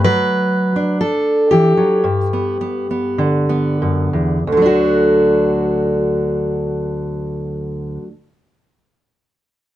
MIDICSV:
0, 0, Header, 1, 2, 480
1, 0, Start_track
1, 0, Key_signature, 2, "major"
1, 0, Tempo, 958466
1, 20, Time_signature, 4, 2, 24, 8
1, 501, Tempo, 1036269
1, 981, Tempo, 1140684
1, 1461, Tempo, 1282051
1, 1941, Tempo, 1336303
1, 3842, End_track
2, 0, Start_track
2, 0, Title_t, "Steel-string acoustic guitar"
2, 0, Program_c, 0, 25
2, 21, Note_on_c, 0, 54, 65
2, 22, Note_on_c, 0, 71, 97
2, 380, Note_on_c, 0, 62, 44
2, 501, Note_off_c, 0, 71, 0
2, 502, Note_off_c, 0, 54, 0
2, 504, Note_on_c, 0, 69, 78
2, 736, Note_on_c, 0, 67, 68
2, 742, Note_on_c, 0, 52, 52
2, 857, Note_off_c, 0, 52, 0
2, 859, Note_on_c, 0, 54, 50
2, 952, Note_off_c, 0, 62, 0
2, 981, Note_on_c, 0, 43, 58
2, 982, Note_off_c, 0, 54, 0
2, 982, Note_off_c, 0, 69, 0
2, 1105, Note_on_c, 0, 59, 40
2, 1217, Note_off_c, 0, 59, 0
2, 1222, Note_on_c, 0, 59, 38
2, 1340, Note_off_c, 0, 59, 0
2, 1347, Note_on_c, 0, 59, 38
2, 1463, Note_on_c, 0, 50, 53
2, 1575, Note_off_c, 0, 59, 0
2, 1579, Note_on_c, 0, 59, 39
2, 1694, Note_off_c, 0, 43, 0
2, 1701, Note_on_c, 0, 42, 49
2, 1817, Note_off_c, 0, 42, 0
2, 1818, Note_on_c, 0, 40, 50
2, 1912, Note_off_c, 0, 50, 0
2, 1912, Note_off_c, 0, 59, 0
2, 1941, Note_off_c, 0, 67, 0
2, 1942, Note_off_c, 0, 40, 0
2, 1946, Note_on_c, 0, 38, 54
2, 1964, Note_on_c, 0, 50, 48
2, 1981, Note_on_c, 0, 54, 48
2, 1998, Note_on_c, 0, 62, 45
2, 2012, Note_on_c, 0, 66, 65
2, 3203, Note_off_c, 0, 38, 0
2, 3208, Note_off_c, 0, 66, 0
2, 3221, Note_off_c, 0, 50, 0
2, 3238, Note_off_c, 0, 54, 0
2, 3255, Note_off_c, 0, 62, 0
2, 3842, End_track
0, 0, End_of_file